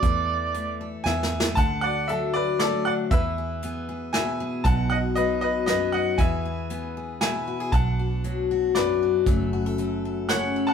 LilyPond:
<<
  \new Staff \with { instrumentName = "Upright piano" } { \time 3/4 \key e \mixolydian \tempo 4 = 117 << { r2 gis''4 | a''8 fis''8 e''8 d''8 d''8 fis''8 | e''2 gis''4 | a''8 fis''8 dis''8 dis''8 dis''8 fis''8 |
gis''2 gis''4 | a''2 d''4 | r2 fis''8. a''16 | } \\ { r2 e''4 | fis''8 d''8 a'8 b'8 a'8 d''8 | b'2 e''4 | fis''8 dis''8 b'8 b'8 b'8 dis''8 |
e''2 e''4 | fis''2 b'4~ | b'2 cis''8. fis''16 | } >> }
  \new Staff \with { instrumentName = "Harmonica" } { \time 3/4 \key e \mixolydian d''2 r4 | r2. | r2. | r2. |
r2. | r2. | r2. | }
  \new Staff \with { instrumentName = "Steel-string acoustic guitar" } { \time 3/4 \key e \mixolydian << { a'4. a'8 gis'4 | d'8 fis'8 d'8 fis'8 a8 d'8 | gis'8 gis'8 gis'8 gis'8 e'8 gis'8 | dis'8 fis'8 dis'8 fis'8 b8 dis'8 |
gis'8 gis'8 gis'8 gis'8 e'8 fis'16 gis'16 | d'8 fis'8 d'8 fis'8 b8 d'8 | <fis a a'>8 fis'16 a'16 a'8 a'8 a8 a'8 | } \\ { e4 a4 e4 | d4 fis4 a,4 | e4 b4 b,4 | b,4 fis4 fis,4 |
e4 b4 b,4 | b,4 fis4 fis,4 | fis,4 fis4 cis4 | } >> }
  \new Staff \with { instrumentName = "Fingered electric bass" } { \clef bass \time 3/4 \key e \mixolydian e,2 e,4 | d,2. | e,2. | b,,2. |
e,2. | b,,2. | fis,,2. | }
  \new DrumStaff \with { instrumentName = "Drums" } \drummode { \time 3/4 <hh bd>4 hh4 \tuplet 3/2 { sn8 sn8 sn8 } | <hh bd>4 hh4 <hh sn>4 | <hh bd>4 hh4 <hh sn>4 | <hh bd>4 hh4 <hh sn>4 |
<hh bd>4 hh4 <hh sn>4 | <hh bd>4 hh4 <hh sn>4 | <hh bd>4 hh4 <hh sn>4 | }
>>